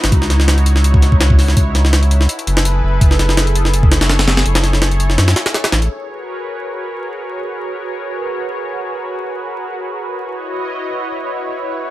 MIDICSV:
0, 0, Header, 1, 4, 480
1, 0, Start_track
1, 0, Key_signature, 5, "minor"
1, 0, Tempo, 361446
1, 162, Time_signature, 4, 2, 24, 8
1, 15809, End_track
2, 0, Start_track
2, 0, Title_t, "Analog synth pad"
2, 0, Program_c, 0, 89
2, 0, Note_on_c, 0, 63, 78
2, 0, Note_on_c, 0, 64, 71
2, 0, Note_on_c, 0, 66, 72
2, 0, Note_on_c, 0, 71, 84
2, 142, Note_off_c, 0, 71, 0
2, 160, Note_on_c, 0, 73, 85
2, 2994, Note_off_c, 0, 63, 0
2, 2995, Note_off_c, 0, 66, 0
2, 3012, Note_off_c, 0, 73, 0
2, 3037, Note_on_c, 0, 71, 88
2, 3038, Note_on_c, 0, 68, 72
2, 3039, Note_on_c, 0, 69, 73
2, 4940, Note_off_c, 0, 71, 0
2, 4965, Note_on_c, 0, 73, 86
2, 7790, Note_off_c, 0, 64, 0
2, 7792, Note_off_c, 0, 68, 0
2, 7793, Note_off_c, 0, 69, 0
2, 7815, Note_off_c, 0, 73, 0
2, 7843, Note_on_c, 0, 71, 67
2, 7844, Note_on_c, 0, 68, 66
2, 7845, Note_on_c, 0, 70, 68
2, 7845, Note_on_c, 0, 73, 81
2, 7846, Note_on_c, 0, 66, 75
2, 13550, Note_off_c, 0, 68, 0
2, 13550, Note_off_c, 0, 73, 0
2, 13551, Note_off_c, 0, 70, 0
2, 13602, Note_on_c, 0, 75, 81
2, 13604, Note_on_c, 0, 64, 75
2, 13604, Note_on_c, 0, 73, 71
2, 15503, Note_off_c, 0, 75, 0
2, 15523, Note_on_c, 0, 76, 84
2, 15809, Note_off_c, 0, 64, 0
2, 15809, Note_off_c, 0, 66, 0
2, 15809, Note_off_c, 0, 71, 0
2, 15809, Note_off_c, 0, 73, 0
2, 15809, Note_off_c, 0, 76, 0
2, 15809, End_track
3, 0, Start_track
3, 0, Title_t, "Sub bass"
3, 0, Program_c, 1, 38
3, 52, Note_on_c, 1, 32, 83
3, 151, Note_off_c, 1, 32, 0
3, 161, Note_on_c, 1, 37, 97
3, 2064, Note_off_c, 1, 37, 0
3, 2082, Note_on_c, 1, 37, 97
3, 3024, Note_off_c, 1, 37, 0
3, 3283, Note_on_c, 1, 30, 100
3, 3745, Note_off_c, 1, 30, 0
3, 3764, Note_on_c, 1, 30, 95
3, 3981, Note_off_c, 1, 30, 0
3, 4002, Note_on_c, 1, 30, 96
3, 5904, Note_off_c, 1, 30, 0
3, 5922, Note_on_c, 1, 30, 99
3, 6875, Note_off_c, 1, 30, 0
3, 6883, Note_on_c, 1, 42, 84
3, 7100, Note_off_c, 1, 42, 0
3, 7602, Note_on_c, 1, 33, 83
3, 7820, Note_off_c, 1, 33, 0
3, 15809, End_track
4, 0, Start_track
4, 0, Title_t, "Drums"
4, 48, Note_on_c, 9, 38, 103
4, 48, Note_on_c, 9, 42, 74
4, 160, Note_off_c, 9, 42, 0
4, 160, Note_on_c, 9, 36, 108
4, 160, Note_on_c, 9, 42, 85
4, 181, Note_off_c, 9, 38, 0
4, 290, Note_on_c, 9, 38, 49
4, 293, Note_off_c, 9, 36, 0
4, 293, Note_off_c, 9, 42, 0
4, 400, Note_off_c, 9, 38, 0
4, 400, Note_on_c, 9, 38, 48
4, 400, Note_on_c, 9, 42, 65
4, 527, Note_off_c, 9, 38, 0
4, 527, Note_on_c, 9, 38, 53
4, 532, Note_off_c, 9, 42, 0
4, 638, Note_off_c, 9, 38, 0
4, 638, Note_on_c, 9, 38, 108
4, 638, Note_on_c, 9, 42, 86
4, 767, Note_off_c, 9, 42, 0
4, 767, Note_on_c, 9, 42, 42
4, 771, Note_off_c, 9, 38, 0
4, 879, Note_off_c, 9, 42, 0
4, 879, Note_on_c, 9, 42, 65
4, 1007, Note_on_c, 9, 38, 46
4, 1012, Note_off_c, 9, 42, 0
4, 1120, Note_on_c, 9, 42, 83
4, 1139, Note_off_c, 9, 38, 0
4, 1249, Note_on_c, 9, 36, 94
4, 1252, Note_off_c, 9, 42, 0
4, 1360, Note_on_c, 9, 38, 34
4, 1360, Note_on_c, 9, 42, 66
4, 1382, Note_off_c, 9, 36, 0
4, 1489, Note_on_c, 9, 36, 92
4, 1493, Note_off_c, 9, 38, 0
4, 1493, Note_off_c, 9, 42, 0
4, 1601, Note_on_c, 9, 38, 112
4, 1601, Note_on_c, 9, 42, 88
4, 1622, Note_off_c, 9, 36, 0
4, 1730, Note_on_c, 9, 36, 96
4, 1734, Note_off_c, 9, 38, 0
4, 1734, Note_off_c, 9, 42, 0
4, 1842, Note_on_c, 9, 38, 46
4, 1842, Note_on_c, 9, 46, 77
4, 1863, Note_off_c, 9, 36, 0
4, 1971, Note_off_c, 9, 38, 0
4, 1971, Note_on_c, 9, 38, 49
4, 1974, Note_off_c, 9, 46, 0
4, 2081, Note_on_c, 9, 36, 105
4, 2081, Note_on_c, 9, 42, 87
4, 2103, Note_off_c, 9, 38, 0
4, 2214, Note_off_c, 9, 36, 0
4, 2214, Note_off_c, 9, 42, 0
4, 2323, Note_on_c, 9, 38, 42
4, 2323, Note_on_c, 9, 42, 58
4, 2453, Note_off_c, 9, 38, 0
4, 2453, Note_on_c, 9, 38, 47
4, 2455, Note_off_c, 9, 42, 0
4, 2562, Note_off_c, 9, 38, 0
4, 2562, Note_on_c, 9, 38, 99
4, 2562, Note_on_c, 9, 42, 76
4, 2691, Note_off_c, 9, 42, 0
4, 2691, Note_on_c, 9, 42, 38
4, 2695, Note_off_c, 9, 38, 0
4, 2804, Note_off_c, 9, 42, 0
4, 2804, Note_on_c, 9, 42, 58
4, 2931, Note_on_c, 9, 38, 44
4, 2936, Note_off_c, 9, 42, 0
4, 3043, Note_on_c, 9, 42, 83
4, 3064, Note_off_c, 9, 38, 0
4, 3172, Note_off_c, 9, 42, 0
4, 3172, Note_on_c, 9, 42, 43
4, 3284, Note_off_c, 9, 42, 0
4, 3284, Note_on_c, 9, 42, 66
4, 3411, Note_on_c, 9, 38, 110
4, 3417, Note_off_c, 9, 42, 0
4, 3523, Note_on_c, 9, 42, 86
4, 3544, Note_off_c, 9, 38, 0
4, 3655, Note_off_c, 9, 42, 0
4, 4001, Note_on_c, 9, 36, 108
4, 4002, Note_on_c, 9, 42, 88
4, 4130, Note_on_c, 9, 38, 50
4, 4133, Note_off_c, 9, 36, 0
4, 4135, Note_off_c, 9, 42, 0
4, 4241, Note_off_c, 9, 38, 0
4, 4241, Note_on_c, 9, 38, 47
4, 4241, Note_on_c, 9, 42, 67
4, 4369, Note_off_c, 9, 38, 0
4, 4369, Note_on_c, 9, 38, 54
4, 4374, Note_off_c, 9, 42, 0
4, 4480, Note_off_c, 9, 38, 0
4, 4480, Note_on_c, 9, 38, 114
4, 4480, Note_on_c, 9, 42, 83
4, 4609, Note_off_c, 9, 42, 0
4, 4609, Note_on_c, 9, 42, 42
4, 4613, Note_off_c, 9, 38, 0
4, 4721, Note_off_c, 9, 42, 0
4, 4721, Note_on_c, 9, 42, 68
4, 4849, Note_on_c, 9, 38, 46
4, 4853, Note_off_c, 9, 42, 0
4, 4960, Note_on_c, 9, 42, 83
4, 4982, Note_off_c, 9, 38, 0
4, 5088, Note_on_c, 9, 36, 93
4, 5093, Note_off_c, 9, 42, 0
4, 5200, Note_on_c, 9, 38, 102
4, 5200, Note_on_c, 9, 42, 77
4, 5221, Note_off_c, 9, 36, 0
4, 5327, Note_off_c, 9, 38, 0
4, 5327, Note_off_c, 9, 42, 0
4, 5327, Note_on_c, 9, 38, 102
4, 5327, Note_on_c, 9, 42, 74
4, 5438, Note_off_c, 9, 38, 0
4, 5438, Note_off_c, 9, 42, 0
4, 5438, Note_on_c, 9, 38, 102
4, 5438, Note_on_c, 9, 42, 80
4, 5566, Note_off_c, 9, 38, 0
4, 5566, Note_off_c, 9, 42, 0
4, 5566, Note_on_c, 9, 38, 104
4, 5566, Note_on_c, 9, 42, 78
4, 5679, Note_off_c, 9, 38, 0
4, 5679, Note_off_c, 9, 42, 0
4, 5679, Note_on_c, 9, 38, 105
4, 5679, Note_on_c, 9, 42, 78
4, 5807, Note_off_c, 9, 38, 0
4, 5807, Note_off_c, 9, 42, 0
4, 5807, Note_on_c, 9, 38, 100
4, 5807, Note_on_c, 9, 42, 78
4, 5918, Note_off_c, 9, 42, 0
4, 5918, Note_on_c, 9, 42, 60
4, 5940, Note_off_c, 9, 38, 0
4, 6045, Note_off_c, 9, 42, 0
4, 6045, Note_on_c, 9, 38, 104
4, 6045, Note_on_c, 9, 42, 77
4, 6157, Note_off_c, 9, 38, 0
4, 6157, Note_off_c, 9, 42, 0
4, 6157, Note_on_c, 9, 38, 43
4, 6157, Note_on_c, 9, 42, 62
4, 6287, Note_off_c, 9, 38, 0
4, 6287, Note_on_c, 9, 38, 49
4, 6289, Note_off_c, 9, 42, 0
4, 6398, Note_off_c, 9, 38, 0
4, 6398, Note_on_c, 9, 38, 103
4, 6398, Note_on_c, 9, 42, 76
4, 6526, Note_off_c, 9, 42, 0
4, 6526, Note_on_c, 9, 42, 38
4, 6531, Note_off_c, 9, 38, 0
4, 6639, Note_off_c, 9, 42, 0
4, 6639, Note_on_c, 9, 42, 60
4, 6769, Note_on_c, 9, 38, 42
4, 6772, Note_off_c, 9, 42, 0
4, 6880, Note_off_c, 9, 38, 0
4, 6880, Note_on_c, 9, 38, 101
4, 6880, Note_on_c, 9, 42, 75
4, 7010, Note_off_c, 9, 38, 0
4, 7010, Note_off_c, 9, 42, 0
4, 7010, Note_on_c, 9, 38, 103
4, 7010, Note_on_c, 9, 42, 75
4, 7120, Note_off_c, 9, 38, 0
4, 7120, Note_off_c, 9, 42, 0
4, 7120, Note_on_c, 9, 38, 101
4, 7120, Note_on_c, 9, 42, 79
4, 7250, Note_off_c, 9, 38, 0
4, 7250, Note_off_c, 9, 42, 0
4, 7250, Note_on_c, 9, 38, 104
4, 7250, Note_on_c, 9, 42, 79
4, 7363, Note_off_c, 9, 38, 0
4, 7363, Note_off_c, 9, 42, 0
4, 7363, Note_on_c, 9, 38, 102
4, 7363, Note_on_c, 9, 42, 77
4, 7490, Note_off_c, 9, 38, 0
4, 7490, Note_off_c, 9, 42, 0
4, 7490, Note_on_c, 9, 38, 104
4, 7490, Note_on_c, 9, 42, 78
4, 7601, Note_off_c, 9, 38, 0
4, 7601, Note_off_c, 9, 42, 0
4, 7601, Note_on_c, 9, 38, 100
4, 7601, Note_on_c, 9, 42, 79
4, 7730, Note_off_c, 9, 42, 0
4, 7730, Note_on_c, 9, 42, 38
4, 7734, Note_off_c, 9, 38, 0
4, 7863, Note_off_c, 9, 42, 0
4, 15809, End_track
0, 0, End_of_file